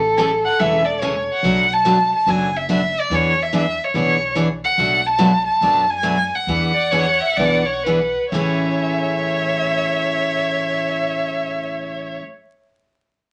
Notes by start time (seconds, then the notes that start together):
Already playing: A1 A4
0.18 C#3 E3 A3 C#4 G#4 A4
0.45 F#5
0.59 E1 C#3 E3 A3 C#4 G#4 E5
0.85 D5
1.00 C#3 E3 A3 C#4 G#4 C#5
1.33 F#5
1.43 B1 B2 F#3 A3 D4 F#4
1.74 A5
1.85 B2 F#3 A3 D4 F#4
2.16 A5
2.27 F#1 B2 F#3 A3 D4 F#4 G#5
2.57 E5
2.69 B2 F#3 A3 D4 F#4 E5
3.00 D5
3.10 E2 E3 B3 D4 G#4
3.14 C#5
3.43 E5
3.53 E3 B3 D4 G#4
3.57 E5
3.84 C#5
3.94 B1 E3 B3 D4 G#4 C#5
4.35 E3 B3 D4 G#4
4.64 F#5
4.78 B1 B2 F#3 A3 D4 F#4
5.06 A5
5.18 B2 F#3 A3 D4 F#4
5.46 A5
5.61 F#2 B2 F#3 A3 D4 F#4
5.90 G#5
6.03 B2 F#3 A3 D4 F#4
6.35 F#5
6.47 E2 E3 B3 D4 G#4
6.74 D5
6.92 E3 B3 D4 G#4 C#5
7.21 E5
7.37 B1 E3 B3 D4 G#4 D5
7.66 C#5
7.84 E3 B3 D4 G#4 B4
8.32 A1 A2 C#3 E3 A3 C#4 G#4 C#5 E5